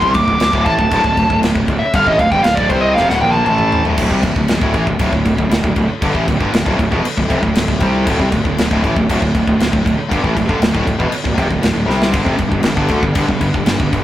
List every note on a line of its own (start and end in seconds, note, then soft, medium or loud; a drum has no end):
0.00 0.14 C2 loud
0.00 3.94 D3 medium
0.00 3.93 A3 medium
0.00 3.95 C4 medium
0.00 3.93 F5 medium
0.00 0.12 C6 loud
0.00 kick medium
0.04 0.15 C3 medium
0.04 0.16 G3 loud
0.14 0.27 D1 medium
0.14 0.29 D2 medium
0.14 0.29 A2 medium
0.14 0.62 D6 loud
0.14 kick loud
0.14 crash medium
0.28 0.40 D1 medium
0.28 0.41 D2 medium
0.28 0.41 A2 medium
0.28 kick medium
0.38 0.53 D1 medium
0.38 0.52 A2 medium
0.38 snare loud
0.38 crash medium
0.42 0.53 D2 medium
0.42 0.54 A2 medium
0.53 0.65 D1 medium
0.53 0.66 D2 medium
0.53 0.66 A2 loud
0.53 kick loud
0.65 0.78 A1 loud
0.65 0.79 A2 medium
0.65 0.79 E3 loud
0.65 1.38 A5 medium
0.65 kick medium
0.65 crash medium
0.79 0.91 D1 medium
0.79 0.92 D2 medium
0.79 0.93 A2 medium
0.79 kick medium
0.91 1.04 D1 medium
0.91 1.05 D2 medium
0.91 1.05 A2 loud
0.91 kick loud
0.91 crash medium
1.04 1.16 D1 medium
1.04 1.18 D2 medium
1.04 1.18 A2 medium
1.04 kick medium
1.17 1.29 D1 medium
1.17 1.31 D2 medium
1.17 1.31 A2 medium
1.17 kick medium
1.17 crash medium
1.27 1.42 D1 medium
1.27 1.38 D2 medium
1.27 1.39 A2 medium
1.27 kick medium
1.32 1.44 D2 medium
1.32 1.44 A2 medium
1.39 1.52 D2 medium
1.39 1.52 A2 medium
1.39 crash medium
1.44 1.54 D1 medium
1.44 1.56 D2 medium
1.44 1.57 A2 medium
1.44 snare loud
1.53 1.67 D1 medium
1.53 1.69 D2 medium
1.53 1.67 A2 medium
1.53 kick medium
1.58 1.69 A2 medium
1.68 1.80 D1 medium
1.68 1.82 D2 medium
1.68 1.82 A2 medium
1.68 kick medium
1.68 crash medium
1.79 1.95 E5 loud
1.79 muted fingered electric bass stroke soft
1.79 muted distorted electric guitar stroke medium
1.94 2.05 G1 loud
1.94 2.07 G2 medium
1.94 2.07 D3 loud
1.94 2.06 F5 loud
1.94 kick loud
1.94 crash medium
2.07 2.18 A1 loud
2.07 2.20 A2 medium
2.07 2.20 E3 medium
2.07 2.19 D#5 medium
2.07 kick medium
2.19 2.31 D1 medium
2.19 2.33 D2 medium
2.19 2.31 F5 loud
2.19 kick medium
2.19 crash medium
2.23 2.34 A2 medium
2.31 2.43 G1 loud
2.31 2.45 G2 medium
2.31 2.45 D3 loud
2.31 2.43 G5 loud
2.31 kick medium
2.43 2.57 D1 medium
2.43 2.56 F5 medium
2.43 snare loud
2.43 crash medium
2.47 2.59 D2 medium
2.47 2.59 A2 medium
2.55 2.69 D1 medium
2.55 2.69 D5 medium
2.55 kick loud
2.60 2.71 D2 medium
2.60 2.71 A2 loud
2.69 2.94 C2 medium
2.69 2.96 C3 medium
2.69 2.96 G3 medium
2.69 2.81 C5 medium
2.69 kick medium
2.69 crash medium
2.74 2.97 C4 loud
2.81 2.94 D#5 medium
2.94 3.09 F1 medium
2.94 3.08 F2 medium
2.94 3.09 C3 loud
2.94 3.07 F5 medium
2.94 snare medium
3.09 3.21 D1 medium
3.09 3.21 D2 medium
3.09 3.21 A2 loud
3.09 3.21 F#5 medium
3.09 snare medium
3.21 3.45 A#1 medium
3.21 3.46 A#2 medium
3.21 3.47 F3 loud
3.21 3.47 A#3 loud
3.21 3.34 G5 loud
3.21 high tom medium
3.31 3.44 A5 loud
3.31 high tom medium
3.45 3.82 A1 loud
3.45 3.84 A2 loud
3.45 3.84 E3 loud
3.45 3.85 A3 loud
3.45 3.81 A5 medium
3.45 mid tom loud
3.58 mid tom medium
3.72 floor tom loud
3.85 3.97 D1 medium
3.85 3.97 D2 medium
3.85 3.97 A2 loud
3.85 floor tom loud
3.97 4.10 D1 loud
3.97 4.10 D2 medium
3.97 4.10 A2 loud
3.97 14.04 D3 medium
3.97 12.11 A3 medium
3.97 14.04 D4 medium
3.97 12.11 F4 medium
3.97 kick loud
3.97 crash loud
3.97 crash medium
4.11 4.22 C2 medium
4.11 4.22 C3 medium
4.11 4.22 G3 medium
4.11 kick medium
4.22 4.35 D1 medium
4.22 4.35 D2 medium
4.22 4.34 A2 medium
4.22 kick medium
4.22 crash medium
4.35 4.48 D1 medium
4.35 4.47 D2 medium
4.35 4.48 A2 medium
4.35 kick medium
4.48 4.61 D1 medium
4.48 4.59 D2 medium
4.48 4.60 A2 medium
4.48 snare loud
4.48 crash medium
4.61 4.73 D1 medium
4.61 4.73 D2 medium
4.61 4.72 A2 loud
4.61 kick loud
4.73 4.86 A1 loud
4.73 4.85 A2 medium
4.73 4.86 E3 loud
4.73 kick medium
4.73 crash medium
4.86 4.99 D1 medium
4.86 4.98 D2 medium
4.86 4.98 A2 medium
4.86 kick medium
4.99 5.12 D1 loud
4.99 5.10 D2 medium
4.99 5.11 A2 medium
4.99 kick loud
4.99 crash medium
5.11 5.24 D1 medium
5.11 5.24 D2 medium
5.11 5.24 A2 medium
5.11 kick medium
5.25 5.37 D1 medium
5.25 5.35 D2 medium
5.25 5.36 A2 medium
5.25 kick medium
5.25 crash medium
5.36 5.49 D1 medium
5.36 5.48 D2 medium
5.36 5.48 A2 medium
5.36 kick medium
5.49 5.62 D1 medium
5.49 5.62 D2 medium
5.49 5.63 A2 medium
5.49 snare loud
5.49 crash medium
5.63 5.75 D1 medium
5.63 5.75 D2 medium
5.63 5.75 A2 medium
5.63 kick loud
5.76 5.88 D1 medium
5.76 5.87 D2 medium
5.76 5.89 A2 medium
5.76 kick medium
5.76 crash medium
5.88 muted distorted electric guitar stroke medium
5.88 muted fingered electric bass stroke soft
6.01 6.14 G1 loud
6.01 6.13 G2 medium
6.01 6.14 D3 loud
6.01 kick loud
6.01 crash medium
6.14 6.26 A1 loud
6.14 6.26 A2 medium
6.14 6.26 E3 medium
6.14 kick medium
6.26 6.39 D1 medium
6.26 6.39 D2 medium
6.26 6.39 A2 medium
6.26 kick medium
6.26 crash medium
6.39 6.52 G1 medium
6.39 6.52 G2 medium
6.39 6.52 D3 loud
6.39 kick medium
6.53 6.65 D1 medium
6.53 6.64 D2 medium
6.53 6.65 A2 medium
6.53 snare loud
6.53 crash medium
6.65 6.78 D1 loud
6.65 6.76 D2 loud
6.65 6.77 A2 loud
6.65 kick medium
6.78 6.91 D1 medium
6.78 6.91 D2 medium
6.78 6.91 A2 medium
6.78 kick medium
6.78 crash medium
6.91 7.03 E1 loud
6.91 7.03 E2 medium
6.91 7.03 B2 loud
6.91 kick medium
7.04 muted distorted electric guitar stroke medium
7.04 muted fingered electric bass stroke soft
7.04 crash loud
7.17 7.29 D1 medium
7.17 7.29 D2 medium
7.17 7.30 A2 medium
7.17 kick medium
7.29 7.42 F1 loud
7.29 7.41 F2 medium
7.29 7.42 C3 loud
7.29 kick medium
7.29 crash medium
7.43 7.55 D1 medium
7.43 7.54 D2 medium
7.43 7.54 A2 medium
7.43 kick medium
7.55 7.68 D1 medium
7.55 7.67 D2 medium
7.55 7.68 A2 medium
7.55 snare loud
7.55 crash loud
7.68 7.80 D1 medium
7.68 7.81 D2 medium
7.68 7.81 A2 medium
7.68 kick medium
7.80 8.05 C2 loud
7.80 8.06 C3 medium
7.80 8.06 G3 loud
7.80 8.06 C4 loud
7.80 kick medium
7.80 crash medium
8.07 8.19 D1 loud
8.07 8.18 D2 medium
8.07 8.19 A2 loud
8.07 kick loud
8.07 crash medium
8.19 8.31 C2 loud
8.19 8.31 C3 medium
8.19 8.31 G3 medium
8.19 kick medium
8.32 8.44 D1 medium
8.32 8.44 D2 medium
8.32 8.45 A2 medium
8.32 kick medium
8.32 crash medium
8.45 8.56 D1 medium
8.45 8.58 D2 medium
8.45 8.58 A2 medium
8.45 kick medium
8.58 8.70 D1 medium
8.58 8.70 D2 medium
8.58 8.70 A2 medium
8.58 snare loud
8.58 crash medium
8.71 8.83 D1 loud
8.71 8.82 D2 loud
8.71 8.82 A2 loud
8.71 kick medium
8.83 8.95 A1 medium
8.83 8.95 A2 medium
8.83 8.95 E3 loud
8.83 kick medium
8.83 crash medium
8.96 9.08 D1 medium
8.96 9.08 D2 medium
8.96 9.09 A2 medium
8.96 kick medium
9.09 9.21 D1 loud
9.09 9.21 D2 medium
9.09 9.21 A2 loud
9.09 kick loud
9.09 crash medium
9.22 9.33 D1 medium
9.22 9.34 D2 medium
9.22 9.34 A2 medium
9.22 kick medium
9.35 9.46 D1 medium
9.35 9.46 D2 medium
9.35 9.46 A2 medium
9.35 kick medium
9.35 crash medium
9.47 9.59 D1 medium
9.47 9.58 D2 medium
9.47 9.58 A2 medium
9.47 kick medium
9.59 9.71 D1 medium
9.59 9.71 D2 medium
9.59 9.71 A2 medium
9.59 snare loud
9.59 crash medium
9.72 9.84 D1 medium
9.72 9.84 D2 medium
9.72 9.84 A2 medium
9.72 kick loud
9.85 9.97 D1 medium
9.85 9.97 D2 medium
9.85 9.98 A2 medium
9.85 kick medium
9.85 crash medium
9.98 muted distorted electric guitar stroke medium
9.98 muted fingered electric bass stroke soft
10.11 10.23 G1 medium
10.11 10.23 G2 medium
10.11 10.23 D3 loud
10.11 kick loud
10.11 crash medium
10.23 10.35 A1 loud
10.23 10.35 A2 medium
10.23 10.35 E3 medium
10.23 kick medium
10.36 10.48 D1 medium
10.36 10.47 D2 medium
10.36 10.48 A2 medium
10.36 kick medium
10.36 crash medium
10.48 10.59 G1 medium
10.48 10.60 G2 medium
10.48 10.60 D3 loud
10.48 kick medium
10.60 10.72 D1 medium
10.60 10.72 D2 medium
10.60 10.73 A2 medium
10.60 snare loud
10.60 crash medium
10.73 10.86 D1 medium
10.73 10.86 D2 loud
10.73 10.86 A2 loud
10.73 kick medium
10.87 10.99 D1 medium
10.87 10.98 D2 medium
10.87 10.98 A2 medium
10.87 kick medium
10.87 crash medium
10.98 11.11 E1 medium
10.98 11.11 E2 medium
10.98 11.11 B2 loud
10.98 kick medium
11.11 muted distorted electric guitar stroke medium
11.11 muted fingered electric bass stroke soft
11.11 crash medium
11.25 11.37 D1 medium
11.25 11.37 D2 medium
11.25 11.38 A2 medium
11.25 kick medium
11.38 11.50 F1 medium
11.38 11.48 F2 medium
11.38 11.49 C3 loud
11.38 kick medium
11.38 crash medium
11.49 11.62 D1 medium
11.49 11.61 D2 medium
11.49 11.61 A2 medium
11.49 kick medium
11.62 11.74 D1 medium
11.62 11.72 D2 medium
11.62 11.73 A2 medium
11.62 snare loud
11.62 crash medium
11.74 11.87 D1 medium
11.74 11.86 D2 medium
11.74 11.87 A2 medium
11.87 12.12 C2 medium
11.87 12.11 C3 medium
11.87 12.12 G3 loud
11.87 12.13 C4 loud
11.87 snare medium
12.02 snare loud
12.11 12.26 G1 loud
12.11 12.24 G2 medium
12.11 12.25 D3 loud
12.11 kick loud
12.11 crash medium
12.16 14.04 G3 medium
12.24 12.39 F1 medium
12.24 12.37 F2 medium
12.24 12.37 C3 medium
12.24 kick medium
12.38 12.51 G1 medium
12.38 12.50 G2 medium
12.38 12.50 D3 medium
12.38 kick medium
12.38 crash medium
12.51 12.63 G1 medium
12.51 12.63 G2 medium
12.51 12.63 D3 medium
12.51 kick medium
12.60 12.76 G1 medium
12.60 12.76 G2 medium
12.60 12.74 D3 medium
12.60 crash medium
12.64 12.76 D3 medium
12.64 snare loud
12.77 12.89 G1 loud
12.77 12.90 G2 loud
12.77 12.89 D3 loud
12.77 kick loud
12.88 13.02 D2 loud
12.88 13.03 D3 medium
12.88 13.03 A3 loud
12.88 kick medium
12.88 crash medium
13.03 13.15 G1 medium
13.03 13.14 G2 medium
13.03 13.14 D3 medium
13.03 kick medium
13.15 13.28 G1 loud
13.15 13.26 G2 medium
13.15 13.27 D3 medium
13.15 kick loud
13.15 crash medium
13.27 13.41 G1 medium
13.27 13.40 G2 medium
13.27 13.41 D3 medium
13.27 kick medium
13.41 13.54 G1 medium
13.41 13.53 G2 medium
13.41 13.54 D3 medium
13.41 kick medium
13.41 crash medium
13.54 13.66 G1 medium
13.54 13.65 G2 medium
13.54 13.66 D3 medium
13.54 kick medium
13.66 13.79 G1 medium
13.66 13.79 G2 medium
13.66 13.79 D3 medium
13.66 snare loud
13.66 crash medium
13.80 13.92 G1 medium
13.80 13.91 G2 medium
13.80 13.90 D3 medium
13.80 kick loud
13.92 14.04 G1 medium
13.92 14.04 G2 medium
13.92 14.04 D3 medium
13.92 kick medium
13.92 crash medium